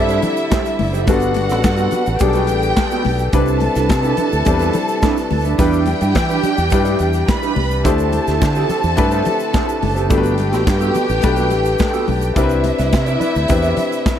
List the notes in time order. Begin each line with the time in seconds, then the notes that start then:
Already playing: G2 D3 G3 C4 D4 E4 A4 E5
0.09 E4 G4 C5, closed hi-hat, shaker
0.22 muted clean electric guitar stroke, closed hi-hat, muted conga, low conga, shaker
0.37 muted clean electric guitar stroke, closed hi-hat, shaker
0.50 E4 G4 C5, kick, snare, clap, high conga, shaker
0.65 muted clean electric guitar stroke, closed hi-hat, shaker
0.79 F#1, muted clean electric guitar stroke, open hi-hat, high conga
0.93 E4 G4 C5, closed hi-hat, shaker
1.07 G1 G3 B3 D4 F#4 A4 B4 F#5, kick, closed hi-hat, muted conga, shaker
1.20 closed hi-hat, shaker
1.34 muted clean electric guitar stroke, closed hi-hat, muted conga
1.49 A1 B3 F#4 A4, snare, closed hi-hat, shaker
1.64 G2, kick, snare, clap, high conga, shaker
1.76 B3 F#4 A4, closed hi-hat, shaker
1.91 B3 F#4 B4, closed hi-hat, low conga, shaker
2.06 A1, closed hi-hat, shaker
2.19 B1 G3 B3 D4 G4 G#4 G5, muted clean electric guitar stroke, kick, closed hi-hat, muted conga, shaker
2.28 A4
2.33 B3 F#4 B4, closed hi-hat, shaker
2.47 A1, muted clean electric guitar stroke, closed hi-hat, shaker
2.63 muted clean electric guitar stroke, closed hi-hat, shaker
2.77 muted clean electric guitar stroke, kick, snare, clap, high conga, shaker
2.91 B3 F#4 A4, closed hi-hat, shaker
3.05 B1, muted clean electric guitar stroke, open hi-hat, high conga
3.19 muted clean electric guitar stroke, closed hi-hat, shaker
3.33 C2 C3 G3 C4 D4 E4 A4 B4 A5, kick, closed hi-hat, muted conga, shaker
3.46 closed hi-hat, shaker
3.60 muted clean electric guitar stroke, closed hi-hat, muted conga
3.75 C2 D4 E4 B4, snare, closed hi-hat, shaker
3.89 C3, muted clean electric guitar stroke, kick, snare, clap, high conga, shaker
4.03 D4 E4 B4, closed hi-hat, shaker
4.17 D4 E4 B4, closed hi-hat, low conga, shaker
4.32 D2, muted clean electric guitar stroke, closed hi-hat, shaker
4.45 E2 G3 C4 D4 E4 A4, muted clean electric guitar stroke, kick, closed hi-hat, muted conga, low conga, shaker
4.54 B4
4.59 D4 E4 B4, closed hi-hat, shaker
4.73 muted clean electric guitar stroke, closed hi-hat, muted conga, low conga, shaker
4.88 muted clean electric guitar stroke, closed hi-hat, shaker
5.03 D4 E4 B4, kick, snare, clap, high conga, shaker
5.17 muted clean electric guitar stroke, closed hi-hat, shaker
5.31 D2, muted clean electric guitar stroke, open hi-hat, high conga
5.44 D4 E4 B4, closed hi-hat, shaker
5.58 E2 E3 G3 D4 E4 G4 B4 G5, kick, closed hi-hat, muted conga, shaker
5.71 closed hi-hat, shaker
5.86 muted clean electric guitar stroke, closed hi-hat, muted conga
6.01 G2 D4 G4 B4, closed hi-hat, shaker
6.15 E3, muted clean electric guitar stroke, kick, snare, clap, high conga, shaker
6.29 D4 G4 B4, closed hi-hat, shaker
6.43 D4 G4 D5, closed hi-hat, low conga, shaker
6.58 E2, muted clean electric guitar stroke, closed hi-hat, shaker
6.70 G2 G3 D4 E4 G4 B4, muted clean electric guitar stroke, kick, closed hi-hat, muted conga, shaker
6.85 D4 G4 D5, closed hi-hat, shaker
6.99 E2, muted clean electric guitar stroke, closed hi-hat, shaker
7.13 muted clean electric guitar stroke, closed hi-hat, shaker
7.28 B4 B5, muted clean electric guitar stroke, kick, snare, clap, high conga, shaker
7.42 D4 G4 B4, closed hi-hat, shaker
7.56 C2, muted clean electric guitar stroke, open hi-hat, high conga
7.71 muted clean electric guitar stroke, closed hi-hat, shaker
7.84 D2 D3 A3 C4 D4 E4 G4 A4 C5 A5, kick, closed hi-hat, muted conga, shaker
7.98 closed hi-hat, shaker
8.13 muted clean electric guitar stroke, closed hi-hat, muted conga
8.28 D2 E4 G4 C5, snare, closed hi-hat, shaker
8.41 D3, muted clean electric guitar stroke, kick, snare, clap, high conga, shaker
8.55 E4 G4 C5, closed hi-hat, shaker
8.69 E4 G4 C5, closed hi-hat, low conga, shaker
8.83 E2, muted clean electric guitar stroke, closed hi-hat, shaker
8.96 G2 A3 D4 E4 G4 B4, muted clean electric guitar stroke, kick, closed hi-hat, muted conga, shaker
9.11 E4 G4 C5, closed hi-hat, shaker
9.25 muted clean electric guitar stroke, closed hi-hat, muted conga, low conga, shaker
9.40 muted clean electric guitar stroke, closed hi-hat, shaker
9.53 E4 G4 C5, kick, snare, clap, high conga, shaker
9.67 muted clean electric guitar stroke, closed hi-hat, shaker
9.82 F#1, muted clean electric guitar stroke, open hi-hat, high conga
9.95 E4 G4 C5, closed hi-hat, shaker
10.09 G1 G3 A3 B3 D4 F#4 G4 A4 B4 G5, kick, closed hi-hat, muted conga, shaker
10.18 B4
10.23 closed hi-hat, shaker
10.38 muted clean electric guitar stroke, closed hi-hat, muted conga
10.51 A1 B3 F#4 A4, snare, closed hi-hat, shaker
10.66 G2, muted clean electric guitar stroke, kick, snare, clap, high conga, shaker
10.80 B3 F#4 A4, closed hi-hat, shaker
10.94 B3 F#4 B4, closed hi-hat, low conga, shaker
11.08 A1, muted clean electric guitar stroke, closed hi-hat, shaker
11.22 B1 A3 D4 G4 A4 B4, muted clean electric guitar stroke, kick, closed hi-hat, muted conga, shaker
11.36 B3 F#4 B4, closed hi-hat, shaker
11.50 A1, muted clean electric guitar stroke, closed hi-hat, muted conga, shaker
11.65 muted clean electric guitar stroke, closed hi-hat, shaker
11.79 muted clean electric guitar stroke, kick, snare, clap, high conga, shaker
11.93 B3 F#4 A4, closed hi-hat, shaker
12.08 B1, muted clean electric guitar stroke, open hi-hat, high conga
12.22 muted clean electric guitar stroke, closed hi-hat, shaker
12.36 C2 C3 C4 D4 E4 G4 A#4 B4 D5 E5, kick, closed hi-hat, muted conga, shaker
12.43 B4
12.49 closed hi-hat, shaker
12.64 muted clean electric guitar stroke, closed hi-hat, muted conga
12.78 C2 E4 B4 D5, snare, closed hi-hat, shaker
12.92 C3, muted clean electric guitar stroke, kick, snare, clap, high conga, shaker
13.06 E4 B4 D5, closed hi-hat, shaker
13.20 E4 B4 D5, closed hi-hat, low conga, shaker
13.35 D2, muted clean electric guitar stroke, closed hi-hat, shaker
13.48 E2 C4 D4 E4 G4 B4, muted clean electric guitar stroke, kick, closed hi-hat, muted conga, low conga, shaker
13.62 E4 B4 D5, closed hi-hat, shaker
13.76 muted clean electric guitar stroke, closed hi-hat, muted conga, low conga, shaker
13.91 muted clean electric guitar stroke, closed hi-hat, shaker
14.05 muted clean electric guitar stroke, kick, snare, clap, high conga, shaker